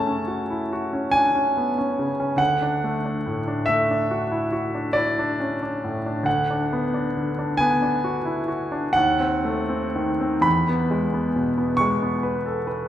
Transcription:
Already playing: F#2 C#3 A3 C#4 F#5 A5
0.07 C#4
0.27 F#4
0.50 E4
0.73 F#4
0.93 C#4
1.11 D4 G#5
1.35 C#4
1.57 B3
1.78 C#4
1.99 C#3
2.20 C#4
2.36 D2 F#5
2.62 D4
2.84 A3
3.05 D4
3.27 A2
3.48 D4
3.66 A3 E5
3.91 D4
4.11 F#4
4.32 E4
4.52 F#4
4.75 D4
4.93 E4 D5
5.19 D4
5.40 C#4
5.62 D4
5.84 A2
6.06 D4
6.23 D2 F#5
6.50 D4
6.73 B3
6.94 D4
7.17 D3
7.39 D4
7.57 B3 G#5
7.82 D4
8.04 F#4
8.25 E4
8.48 F#4
8.72 D4
8.93 D#2 F#5
9.20 C4
9.45 A3
9.69 C4
9.95 D#3
10.20 C4
10.41 E2 B5
10.69 B3
10.91 G#3
11.14 B3
11.36 B2
11.58 B3
11.77 G#3 C#6
12.02 B3
12.23 B4
12.46 A4
12.67 B4

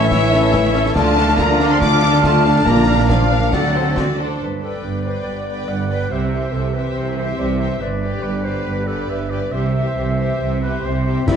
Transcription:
Already playing: A1 A2 E3 C#4 E4 A4 C#5 E5 E6
0.11 A3 E4 C#5 E5, concert bass drum, snare
0.32 C#4 A4 C#5, snare
0.53 A3 E4 C#5 E5, concert bass drum, snare
0.74 C#4 A4 C#5, snare
0.86 snare
0.94 D2 D3 A3 D4 F4 D5 A5 F6, concert bass drum, snare
1.18 D4 A4 F5, snare
1.28 snare
1.37 A3 A#3 F4 D5 A#5, concert bass drum, snare
1.59 D4 A4 F5, snare
1.70 C4 C6
1.79 A3 D4 F4 D5 D6, concert bass drum, snare
2.02 D4 A4 F5, snare
2.13 snare
2.22 A3 F4 D5 A5, concert bass drum, snare
2.44 D4 A4 F5, snare
2.56 snare
2.65 A#1 A#2 A#3 F4 D5 A#5, concert bass drum, snare
2.87 D4 A#4 F5
3.08 F3 A#3 F4 D5 F5, concert bass drum, snare
3.31 D4 A#4 F5
3.52 D2 D3 F#3 A3 C4 D4 F#4 D5 F#5 A6, concert bass drum, snare
3.75 C4 F#4 A4 C5
3.96 C4 F#4 D5, concert bass drum, snare
4.17 D4 A4 C5
4.39 G1 G2 D3 B3 B4 D5
4.62 A4 B4 D5 G5
4.83 G1 G2 B4
5.04 B4 C5 D5 G5
5.26 G1 G2 D5
5.47 B4 D5 G5
5.68 G1 G2 D5 F#5
5.90 B4 D5 G5
6.11 C2 C3 E3 C4 G4 C5 E5
6.32 G4 C5 E5
6.52 C2 C3 A4 E5
6.74 G4 B4 C5 E5
6.95 C2 C3 C5
7.17 G4 C5 E5
7.38 C2 C3 D5
7.59 G4 C5 E5
7.80 G1 G2 D3 B3 B4 D5
8.02 G4 B4 D5
8.22 G1 G2 B4 D5
8.44 G4 B4 C5 D5
8.66 G1 G2 B4
8.87 G4 A4 B4 D5
9.09 G1 G2 B4 E5
9.30 G4 B4 D5
9.52 C2 C3 E3 C4 G4 C5 E5
9.74 G4 C5 E5
9.96 C2 C3
10.18 G4 C5 E5
10.40 C2 C3
10.61 B3 G4 B4 C5 E5
10.83 C2 C3 C4 C5
11.06 G4 C5 E5
11.27 G1 G2 E4 G4 B4 D5 E5 G5 B5, concert bass drum, snare, crash

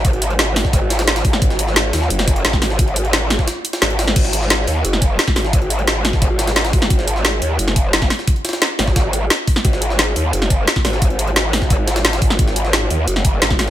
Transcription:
Already playing: G#1
0.05 kick, closed hi-hat
0.13 closed hi-hat
0.22 closed hi-hat
0.30 closed hi-hat
0.39 snare, closed hi-hat
0.56 snare, closed hi-hat, open hi-hat
0.65 kick, snare
0.73 kick, closed hi-hat
0.90 snare, closed hi-hat
0.99 snare, closed hi-hat
1.08 snare, closed hi-hat
1.16 snare, closed hi-hat
1.25 G#1, kick, closed hi-hat, open hi-hat
1.33 snare
1.42 G#1, kick, closed hi-hat
1.50 snare
1.59 closed hi-hat
1.68 snare
1.76 snare, closed hi-hat
1.93 D#2, snare, closed hi-hat, open hi-hat
2.02 snare
2.10 F#1, closed hi-hat
2.19 snare, closed hi-hat
2.28 kick, snare, closed hi-hat
2.36 closed hi-hat
2.45 G#1, snare, closed hi-hat
2.53 kick, snare
2.62 G#1, snare, closed hi-hat, open hi-hat
2.70 snare
2.79 kick, closed hi-hat
2.88 closed hi-hat
2.96 closed hi-hat
3.05 closed hi-hat
3.13 snare, closed hi-hat
3.30 snare, closed hi-hat, open hi-hat
3.39 kick, snare
3.48 snare, closed hi-hat
3.65 closed hi-hat
3.73 snare, closed hi-hat
3.82 G#1, snare, closed hi-hat
3.90 closed hi-hat
3.99 snare, closed hi-hat, open hi-hat
4.08 snare
4.16 G#1, kick, closed hi-hat, crash
4.25 snare
4.33 closed hi-hat
4.42 snare
4.50 snare, closed hi-hat
4.67 D#2, closed hi-hat, open hi-hat
4.85 F#1, closed hi-hat
4.93 snare
5.02 kick, closed hi-hat
5.19 snare, closed hi-hat
5.28 kick, snare
5.36 G#1, snare, closed hi-hat, open hi-hat
5.45 snare
5.53 kick, closed hi-hat
5.62 closed hi-hat
5.70 closed hi-hat
5.79 closed hi-hat
5.87 snare, closed hi-hat
6.05 snare, closed hi-hat, open hi-hat
6.13 kick, snare
6.22 kick, closed hi-hat
6.39 snare, closed hi-hat
6.47 snare, closed hi-hat
6.56 snare, closed hi-hat
6.65 snare, closed hi-hat
6.73 G#1, kick, closed hi-hat, open hi-hat
6.82 snare
6.90 G#1, kick, closed hi-hat
6.99 snare
7.07 closed hi-hat
7.16 snare
7.25 snare, closed hi-hat
7.42 D#2, closed hi-hat, open hi-hat
7.59 F#1, closed hi-hat
7.68 snare
7.76 kick, closed hi-hat
7.93 F#1, snare, closed hi-hat
8.02 kick, snare
8.10 snare, closed hi-hat, open hi-hat
8.19 snare
8.28 kick, closed hi-hat
8.36 closed hi-hat
8.45 snare, closed hi-hat
8.49 snare, closed hi-hat
8.53 snare, closed hi-hat
8.62 snare, closed hi-hat
8.79 G#1, snare, closed hi-hat, open hi-hat
8.87 kick, snare
8.96 kick, snare, closed hi-hat
9.13 closed hi-hat
9.30 snare, closed hi-hat
9.47 kick, closed hi-hat, open hi-hat
9.56 snare
9.65 G#1, kick, closed hi-hat
9.73 snare
9.82 closed hi-hat
9.90 snare
9.99 snare, closed hi-hat
10.16 D#2, closed hi-hat, open hi-hat
10.33 F#1, closed hi-hat
10.42 snare
10.50 kick, closed hi-hat
10.68 snare, closed hi-hat
10.76 kick, snare
10.85 G#1, snare, closed hi-hat, open hi-hat
10.93 snare
11.02 kick, closed hi-hat
11.10 closed hi-hat
11.19 closed hi-hat
11.28 closed hi-hat
11.36 snare, closed hi-hat
11.53 snare, closed hi-hat, open hi-hat
11.62 kick, snare
11.70 kick, closed hi-hat
11.87 snare, closed hi-hat
11.96 snare, closed hi-hat
12.05 snare, closed hi-hat
12.13 snare, closed hi-hat
12.22 G#1, kick, closed hi-hat, open hi-hat
12.30 snare
12.39 G#1, kick, closed hi-hat
12.48 snare
12.56 closed hi-hat
12.65 snare
12.73 snare, closed hi-hat
12.90 D#2, open hi-hat
13.08 F#1, closed hi-hat
13.16 snare
13.25 kick, closed hi-hat
13.42 G#1, snare, closed hi-hat
13.50 kick, snare
13.59 G#1, snare, closed hi-hat, open hi-hat

